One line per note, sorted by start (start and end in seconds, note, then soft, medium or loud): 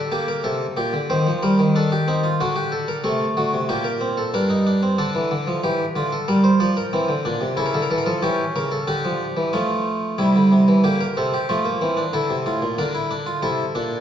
0.00 0.42 D3 medium
0.00 0.11 A4 medium
0.12 1.06 A#3 medium
0.12 0.27 G4 medium
0.28 0.44 A#4 medium
0.44 0.64 C3 medium
0.44 0.64 A4 medium
0.77 0.92 A#2 medium
0.77 0.97 G4 medium
0.93 1.09 D3 medium
1.10 1.25 D#3 medium
1.10 1.73 C4 medium
1.10 1.30 C5 medium
1.27 1.42 F3 medium
1.43 1.58 G3 medium
1.43 1.63 A#4 medium
1.59 2.38 D#3 medium
1.75 1.95 D4 medium
1.75 1.91 A4 medium
1.92 2.07 G4 medium
2.08 2.28 C4 medium
2.08 2.23 D#4 medium
2.23 2.39 F4 medium
2.40 3.03 D3 medium
2.40 3.03 D4 medium
2.40 2.56 F#4 medium
2.56 2.71 G4 medium
2.72 2.88 A4 medium
2.88 3.04 A#4 medium
3.04 3.24 C3 medium
3.04 3.67 A3 medium
3.04 3.24 A4 medium
3.37 3.52 D3 medium
3.37 3.57 F#4 medium
3.53 3.69 C3 medium
3.69 4.31 A#2 medium
3.69 3.89 A#3 medium
3.69 3.85 G4 medium
3.84 4.04 A#4 medium
4.01 4.21 C4 medium
4.17 4.33 A4 medium
4.34 4.96 G2 medium
4.34 4.49 D4 medium
4.34 4.97 A#4 medium
4.50 4.65 D#4 medium
4.67 4.82 D4 medium
4.83 4.98 C4 medium
4.98 5.14 D3 medium
4.98 6.88 D4 medium
4.98 5.61 A4 medium
5.15 5.30 E3 medium
5.31 5.46 D3 medium
5.47 5.63 F3 medium
5.64 5.83 E3 medium
5.64 5.83 G4 medium
5.96 6.15 D3 medium
5.96 6.11 F4 medium
6.12 6.27 A4 medium
6.28 6.48 G3 medium
6.28 6.43 A#4 medium
6.44 6.59 C5 medium
6.60 6.80 F3 medium
6.60 6.76 D5 medium
6.77 7.55 A#4 medium
6.93 7.08 E3 medium
6.93 7.13 C4 medium
7.08 7.24 D3 medium
7.25 7.41 A#2 medium
7.25 7.45 D4 medium
7.41 7.57 C3 medium
7.57 7.73 C#3 medium
7.57 8.20 E4 medium
7.57 7.65 A4 medium
7.66 7.74 A#4 medium
7.74 7.90 D3 medium
7.74 7.82 A4 medium
7.82 7.90 A#4 medium
7.91 8.06 E3 medium
7.91 7.98 A4 medium
7.98 8.06 A#4 medium
8.06 8.22 F3 medium
8.06 8.22 A4 medium
8.22 8.43 E3 medium
8.22 8.86 C#4 medium
8.22 8.43 G4 medium
8.56 8.76 C#3 medium
8.56 8.71 A#4 medium
8.72 8.87 A4 medium
8.87 9.03 D3 medium
8.87 9.51 D4 medium
8.87 9.51 G4 medium
9.05 9.25 F3 medium
9.37 9.52 E3 medium
9.53 10.17 F3 medium
9.53 10.17 A3 medium
9.53 10.16 F4 medium
10.18 10.34 C3 medium
10.18 10.82 G3 medium
10.18 10.82 E4 medium
10.36 10.51 D3 medium
10.52 10.67 C3 medium
10.68 10.84 E3 medium
10.84 11.04 D3 medium
10.84 11.04 A#3 medium
10.84 11.00 G4 soft
11.00 11.16 A#4 medium
11.17 11.37 C3 medium
11.17 11.37 C4 medium
11.17 11.32 A4 medium
11.34 11.49 G4 medium
11.49 11.69 F3 medium
11.49 11.65 A3 medium
11.49 12.12 F4 medium
11.65 11.81 A#3 medium
11.81 12.02 E3 medium
11.81 11.97 C4 medium
11.97 12.13 D4 medium
12.13 12.29 D3 medium
12.13 12.33 E4 medium
12.13 12.77 A4 medium
12.30 12.46 C3 medium
12.46 12.62 A2 medium
12.46 12.66 F4 medium
12.62 12.78 A#2 medium
12.78 13.41 D3 medium
12.78 12.94 D4 medium
12.78 13.41 A#4 medium
12.94 13.10 E4 medium
13.11 13.27 D4 medium
13.26 13.43 F4 medium
13.42 13.63 C3 medium
13.42 13.63 E4 medium
13.42 14.01 A4 medium
13.75 13.95 A#2 medium
13.75 13.95 D4 medium